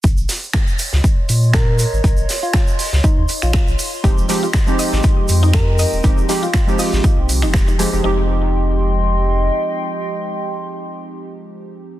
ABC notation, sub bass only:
X:1
M:4/4
L:1/16
Q:"Swing 16ths" 1/4=120
K:Fm
V:1 name="Sub bass" clef=bass
B,,, A,,, z4 z D,, z2 B,,4 z A,,, | B,,, A,,, z4 z D,, z E,, z B,,, z B,,, z2 | F,,, E,,, z4 z A,,, z2 F,,4 z E,,, | F,,, E,,, z4 z A,,, z B,,, C,, F,,,3 z F,,, |
F,,,12 z4 | z16 |]